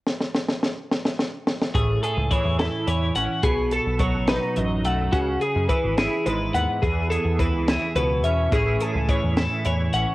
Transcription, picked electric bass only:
\new Staff \with { instrumentName = "Picked electric bass" } { \clef bass \time 6/8 \key a \lydian \tempo 4. = 71 r2. | a,,8 r16 cis,16 r16 e,8 r16 e,8 a,,16 r16 | b,,8. b,,8 a,,8 r16 a,,8 b,,8 | cis,8 r16 fis,16 r16 gis,,8 r16 gis,,8 dis,16 r16 |
e,8. e,8 cis,8 r16 cis,8 e,8 | a,,8 r16 cis,16 r16 e,8 r16 e,8 a,,16 r16 | }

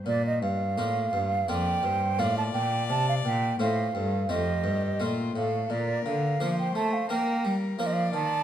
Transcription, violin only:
\new Staff \with { instrumentName = "Violin" } { \time 4/4 \key bes \major \tempo 4 = 85 r2 d''8 c''8 d''4~ | d''4 c''8 a'8 g'4 f'8 a'8 | bes'4 c''4 bes'4 d''4 | }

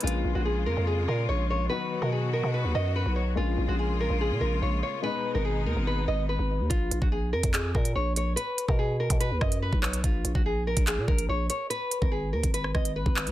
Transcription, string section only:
\new Staff \with { instrumentName = "String section" } { \time 4/4 \key bes \phrygian \tempo 4 = 144 <des aes bes f'>1 | <dis fis b fis'>1 | <des aes bes f'>1 | <ces aes ces' ees'>1 |
r1 | r1 | r1 | r1 | }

